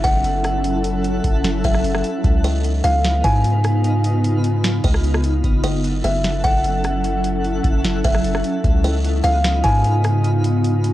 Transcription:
Already playing: F#3 C#4 E4 A4 F#5, downlifter
0.04 F#1 F#5, kick, closed hi-hat
0.24 closed hi-hat
0.44 cross-stick, closed hi-hat
0.64 closed hi-hat
0.84 closed hi-hat
1.04 closed hi-hat
1.24 F#1, kick, closed hi-hat
1.44 snare, closed hi-hat
1.64 F#1 E5, kick, closed hi-hat
1.74 cross-stick
1.84 closed hi-hat
1.94 cross-stick
2.04 closed hi-hat
2.24 C#2 C#3 B3 D#4 F4 B4 F5, kick, closed hi-hat
2.44 D#5, closed hi-hat
2.64 closed hi-hat
2.84 C#2 F5, closed hi-hat
3.04 snare, closed hi-hat
3.24 G#2 G#5, kick, closed hi-hat
3.44 closed hi-hat
3.64 cross-stick, closed hi-hat
3.84 closed hi-hat
4.04 closed hi-hat
4.24 closed hi-hat
4.44 closed hi-hat
4.64 snare, closed hi-hat
4.84 C#2 D#5, kick, closed hi-hat
4.94 cross-stick
5.04 closed hi-hat
5.15 cross-stick
5.24 closed hi-hat
5.44 F#1 F#3 C#4 E4 A4 F#5, kick, closed hi-hat
5.64 D#5, closed hi-hat
5.84 closed hi-hat
6.04 F#1 E5, closed hi-hat
6.24 snare, closed hi-hat
6.44 F#1 F#5, kick, closed hi-hat
6.64 closed hi-hat
6.84 cross-stick, closed hi-hat
7.04 closed hi-hat
7.24 closed hi-hat
7.44 closed hi-hat
7.64 F#1, kick, closed hi-hat
7.84 snare, closed hi-hat
8.04 F#1 E5, kick, closed hi-hat
8.14 cross-stick
8.24 closed hi-hat
8.35 cross-stick
8.44 closed hi-hat
8.64 C#2 C#3 B3 D#4 F4 B4 F5, kick, closed hi-hat
8.84 D#5, closed hi-hat
9.04 closed hi-hat
9.24 C#2 F5, closed hi-hat
9.44 snare, closed hi-hat
9.64 G#2 G#5, kick, closed hi-hat
9.84 closed hi-hat
10.04 cross-stick, closed hi-hat
10.24 closed hi-hat
10.44 closed hi-hat
10.64 closed hi-hat
10.84 closed hi-hat

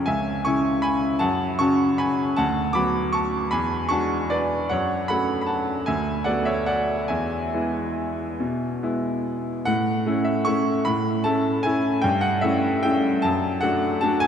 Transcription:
Already playing: F2 C#3 C#4 F4 C#5
0.06 C#2 E5 G#5
0.45 C#3 C#4 E4 G#5 C#6
0.82 G#5 B5
1.19 F#2 F#5 A5
1.59 C#3 C#4 F#4 A5 C#6
1.98 G#5 B5
2.36 D2 F#5 A5
2.73 F#3 B3 F#4 B5 D6
3.13 A5 C#6
3.51 E2 G#5 B5
3.89 G#3 D4 F#4 A5 C#6
4.30 B4 D5
4.69 F#2 C#5 F#5
5.08 A3 C#4 F#4 F#5 B5
5.41 B5
5.46 F#5 A5
5.86 D2 E5 G#5
6.24 A3 B3 F#4 D5 F#5
6.45 C#5 E5
6.66 D5 F#5
7.08 E2 E5 G#5
7.54 G#3 B3 E4
8.40 B2
8.83 G#3 B3 E4
9.65 A2 F#5
10.06 A3 C#4 E4
10.24 E5
10.45 A3 C#4 E4 C#6
10.85 A2 B5
11.24 A3 C#4 E4 A5
11.63 A3 C#4 E4 G#5
12.02 G2 G5
12.21 F#5
12.41 A3 C#4 E4 E5
12.83 A3 C#4 E4 G5
13.22 F#2 A5
13.61 A3 D4 F#4 F#5
14.01 A3 D4 F#4 A5
14.20 G#5

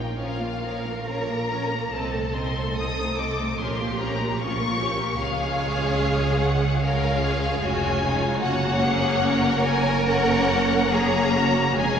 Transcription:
Already playing: A#1 A#3 D#4 F4 A#4 G5
0.16 F3 C#4 F4 A#4 C#5 F5
0.39 A#3 F4 A#4
0.63 F3 C#4 A#4 C#5
0.86 A#3 F4 A#4
1.07 F3 C#4 A#4 C#5 A#5
1.30 A#3 F4 A#4
1.51 F3 C#4 A#4 C#5
1.73 A#3 F4 A#4
1.92 C2 C4 A4 D#5 A5
2.13 A3 D#4 C5
2.35 C4 D#5 C6
2.57 A3 D#4 C5
2.77 C4 D#5 D#6
2.98 A3 D#4 C5
3.18 C4 D#5 D6
3.39 A3 D#4 C5
3.59 A#1 F3 C#4 G4 A#4 C#5 C6
3.78 A#3 F4 A#4
3.98 F3 C#4 A#5
4.02 A#4 C#5
4.19 A#3 F4 A#4
4.39 F3 C#4 F4 A#4 C#5 C#6
4.59 A#3 F4 A#4
4.79 F3 C#4 G4 A#4 C#5
4.99 A#3 F4 A#4
5.19 C#2 G#3 C#4 F4 G#4 C#5 F5
6.40 F#5
6.81 G#3 C#4 F4 A#4 C#5 F5
7.21 G#4
7.61 F1 G#3 C#4 F4 F#4 C#5 G#5
8.02 D#4 F4
8.42 F#1 A#3 C#4 F#4 C#5 F#5
8.84 G#4
9.25 A#4
9.67 G#5
10.07 A#3 C#4 C#5 F#5
10.91 A#3 C#4 G#4 C#5 A#5
11.34 F#4
11.76 F1 G#3 C#4 G#4 C#5 G#5

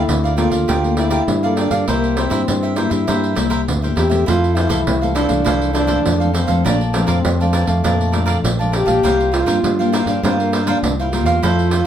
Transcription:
Already playing: A#3 E4 A4
0.08 D2 D3, pandeiro
0.24 A#4 D5 F5, pandeiro
0.36 A#3 F4 G4 A4 A#4 D5 F5, pandeiro
0.50 D2 A#4 D5 F5, pandeiro
0.68 D2 G3 G4 A#4 D5 F5, pandeiro
0.84 A#3 A4, pandeiro
0.97 E4 G4 A#4 D5 F5, pandeiro
1.10 G4 A#4 D5 F5, pandeiro
1.28 G2 D3, pandeiro
1.43 A#3 F4 A4 A#4 D5 F5, pandeiro
1.56 D4 G4 A#4 D5 F5, pandeiro
1.71 G2 A#4 D5 F5, pandeiro
1.88 C2 C3 G3 A#3 E4 A#4 C5 E5, pandeiro
2.04 pandeiro
2.17 C4 E4 A#4 C5 E5, pandeiro
2.30 G2 G3 A#3 E4 A#4 C5 E5, pandeiro
2.48 G2, pandeiro
2.63 A#4 C5 E5, pandeiro
2.76 G3 A#3 E4 A#4 C5 E5, pandeiro
2.90 G2 A#4 C5 E5, pandeiro
3.07 G2 C3 G3 A#3 E4 A#4 C5 E5, pandeiro
3.24 pandeiro
3.35 C2 G3 A#3 E4 A#4 C5 E5, pandeiro
3.50 E4 A#4 C5 E5, pandeiro
3.68 D2 G2, pandeiro
3.82 G3 A#3 E4 A#4 C5 E5, pandeiro
3.95 E2 E4 G4 A#4 C5 E5, pandeiro
4.10 A3 C4 A#4 C5 E5, pandeiro
4.26 F2 E4 F4 A4 C5 F5, pandeiro
4.44 pandeiro
4.54 E4 A4 C5 F5, pandeiro
4.69 C2 E3 A3 C4 E4 A4 C5 F5, pandeiro
4.87 C2 C3, pandeiro
5.02 E3 A3 C4 A4 C5 F5, pandeiro
5.15 D4 E4 A4 C5 F5, pandeiro
5.28 C2 E3 A3 C4 A4 C5 F5, pandeiro
5.44 C2 F2 E3 A3 C4 E4 A4 C5 F5, pandeiro
5.62 pandeiro
5.73 D4 E4 A4 C5 F5, pandeiro
5.87 E3 A3 C4 E4 A4 C5 F5, pandeiro
6.06 F2 C3, pandeiro
6.20 E3 A3 A4 C5 F5, pandeiro
6.24 C4
6.33 C4 E4 A4 C5 F5, pandeiro
6.47 F2 F3 A3 D4 A4 C5 F5, pandeiro
6.65 A#1 A#2 D4 A#4 D5 F5 A5, pandeiro
6.81 pandeiro
6.93 F3 A3 C4 D4 A#4 D5 F5 A5, pandeiro
7.07 F2 A#4 D5 F5 A5, pandeiro
7.25 F2, pandeiro
7.40 F3 A3 D4 D5 F5 A5, pandeiro
7.53 A#4 D5 F5 A5, pandeiro
7.67 F2 A3 D5 F5 A5, pandeiro
7.84 F2 A#2 F3 A3 D4 A#4 D5 F5 A5, pandeiro
8.01 pandeiro
8.12 F3 A3 D4 A#4 D5 F5 A5, pandeiro
8.26 A#4 D5 F5 A5, pandeiro
8.44 A#1 F2, pandeiro
8.59 F3 A3 D4 D5 F5 A5, pandeiro
8.72 G4 A#4 D5 F5 A5, pandeiro
8.86 A#1 G3 A#3 F4 D5 F5 A5, pandeiro
9.03 C2 C3 F4 A#4 C5 F5, pandeiro
9.21 pandeiro
9.32 F4 A#4 C5 F5, pandeiro
9.46 G2 G3 A#3 F4 A#4 C5 F5, pandeiro
9.64 G2, pandeiro
9.79 G3 A#3 F4 A#4 C5 F5, pandeiro
9.92 E4 F4 A#4 C5 F5, pandeiro
10.06 G2 D4 A#4 C5 F5, pandeiro
10.23 G2 C3 G3 A#3 C4 F4 A#4 C5 F5, pandeiro
10.39 A#3, pandeiro
10.52 F4 A#4 C5 F5, pandeiro
10.66 G3 A#3 D4 F4 A#4 C5 F5, pandeiro
10.83 C2 G2, pandeiro
10.99 E4 A#4 C5 F5, pandeiro
11.11 G3 A#3 F4 A#4 C5 F5, pandeiro
11.25 E2 A#4 C5 F5, pandeiro
11.42 F2 F3 A3 C4 E4 A4 C5 F5, pandeiro
11.59 pandeiro
11.71 E4 A4 C5 F5, pandeiro

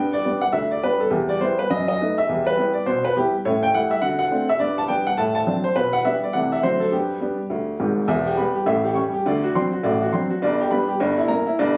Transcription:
Already playing: G2 B3 G5
0.13 D5
0.25 G3 B3 D4
0.41 F#5
0.53 D2 E5
0.71 D5
0.83 G3 B3 D4 B4
1.00 A4
1.10 E2 G3 G4
1.29 D5
1.41 G3 B3 E4 C5
1.59 B4
1.70 F#2 D#5
1.88 D#5
2.01 A3 B3 D#4
2.18 E5
2.29 E2 G3
2.47 B4
2.57 G3 B3 E4
2.73 D5
2.86 B2 C5
3.05 B4
3.17 G3 B3 E4 G4
3.45 A2 C#4 C#5
3.63 G5
3.74 G3 A3 E4 F#5
3.91 E5
4.02 D3 F#4 F#5
4.19 F#5
4.30 A3 C4 D4
4.49 E5
4.59 G2 B3 D5
4.78 A5
4.88 G3 B3 D4 G5
5.07 F#5
5.17 A2 A5
5.35 A5
5.47 F#3 C4 D4
5.64 C5
5.76 B2 B4
5.93 F#5
6.05 G3 B3 D4 E5
6.23 D5
6.33 C3 E3 A3 E4 F#5
6.52 E5
6.63 D3 F#3 A3 D4 F#4 C5
6.80 A4
6.92 G2 B3 G4
7.20 G3 B3 D4
7.50 D2
7.80 G#1 G#2
8.08 E1 E2 E5
8.26 G4
8.37 G3 B3 B5
8.55 G4
8.66 A1 A2 E5
8.85 G4
8.94 G3 C#4 C#6
9.14 G4
9.26 D2 D3 D5
9.44 F#4
9.55 F#3 C4 D4 C6
9.73 F#4
9.83 A1 A2 D5
10.02 F#4
10.13 F#3 C4 D4 C6
10.30 F#4
10.42 G1 G2 D5
10.60 G4
10.71 G3 B3 D4 B5
10.89 G4
11.00 G1 G2 C#5
11.17 E4
11.28 A#3 C#4 A#5
11.47 E4
11.59 G1 G2 D5

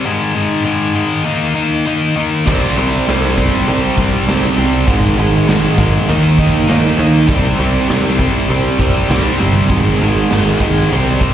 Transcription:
0.04 G#2 D#3 G#3
0.35 G#2 D#3 G#3
0.65 G#2 D#3 G#3
0.94 G#2 D#3 G#3
1.24 D#3 A#3 D#4
1.55 D#3 A#3 D#4
1.86 D#3 A#3 D#4
2.16 D#3 A#3 D#4
2.46 C2 C3 G3 C4, kick, crash
2.77 C2 C3 G3 C4
3.07 C2 C3 G3 C4, snare, open hi-hat
3.37 C3 G3 C4, kick
3.68 C2 C3 G3 C4, open hi-hat
3.98 C2 C3 G3 C4, kick
4.28 C2 C3 G3 C4, snare, open hi-hat
4.58 C2 C3 G3 C4
4.87 G#1 G#2 D#3 G#3, kick, open hi-hat
5.17 G#1 G#2 D#3 G#3
5.48 G#1 G#2 D#3 G#3, snare, open hi-hat
5.78 G#1 G#2 D#3 G#3, kick
6.08 D#2 D#3 A#3 D#4, open hi-hat
6.38 D#3 A#3 D#4, kick
6.68 D#2 D#3 A#3 D#4, snare, open hi-hat
6.98 D#2 D#3 A#3 D#4
7.28 C2 C3 G3 C4, kick, open hi-hat
7.58 C2 C3 G3 C4
7.89 C2 C3 G3 C4, snare, open hi-hat
8.18 C3 G3 C4, kick
8.49 C2 C3 G3 C4, open hi-hat
8.79 C2 C3 G3 C4, kick
9.09 C2 C3 G3 C4, snare, open hi-hat
9.38 G1 C3 G3 C4
9.69 G#1 G#2 D#3 G#3, kick, open hi-hat
9.99 G#1 G#2 D#3 G#3
10.29 G#1 G#2 D#3 G#3, snare, open hi-hat
10.59 G#1 G#2 D#3 G#3, kick
10.90 C2 C3 G3 C4, open hi-hat
11.20 C3 G3 C4, kick

